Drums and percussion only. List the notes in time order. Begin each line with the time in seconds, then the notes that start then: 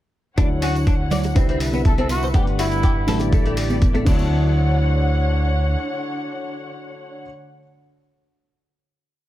0.38 kick, closed hi-hat, tambourine
0.62 open hi-hat, tambourine
0.75 closed hi-hat, tambourine
0.87 kick, closed hi-hat, tambourine
1.11 open hi-hat, tambourine, low conga
1.23 closed hi-hat, tambourine, high bongo
1.36 kick, closed hi-hat, tambourine
1.49 closed hi-hat
1.60 open hi-hat, tambourine
1.73 tambourine, high conga
1.85 kick, closed hi-hat, tambourine
1.98 closed hi-hat, high conga
2.09 open hi-hat, tambourine
2.23 tambourine
2.34 kick, closed hi-hat, tambourine
2.47 closed hi-hat
2.59 open hi-hat, tambourine
2.71 closed hi-hat, tambourine
2.83 kick, closed hi-hat, tambourine
3.08 open hi-hat, tambourine, low conga
3.20 closed hi-hat, tambourine, high bongo
3.32 kick, closed hi-hat, tambourine
3.46 closed hi-hat
3.57 open hi-hat, tambourine
3.70 tambourine, high conga
3.82 kick, closed hi-hat, tambourine
3.95 closed hi-hat, high conga
4.06 kick, crash, tambourine
4.19 tambourine